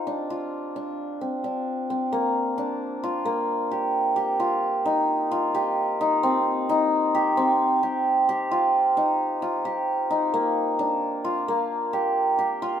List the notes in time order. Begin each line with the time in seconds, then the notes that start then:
Already playing: C4 D#4 F4 G4
0.07 D4
0.30 F4
0.76 D4
1.21 C4
1.44 D4
1.90 C4
2.12 A#3
2.58 D4
3.03 F4
3.25 A#3
3.71 G4
4.16 G4
4.40 F4
4.86 D#4
5.32 F4
5.55 G4
6.01 D#4
6.23 C4
6.69 D#4
7.15 G4
7.37 C4
7.83 G4
8.29 G4
8.51 F4
8.97 D#4
9.42 F4
9.65 G4
10.11 D#4
10.34 A#3
10.79 D4
11.24 F4
11.48 A#3
11.93 G4
12.39 G4
12.62 F4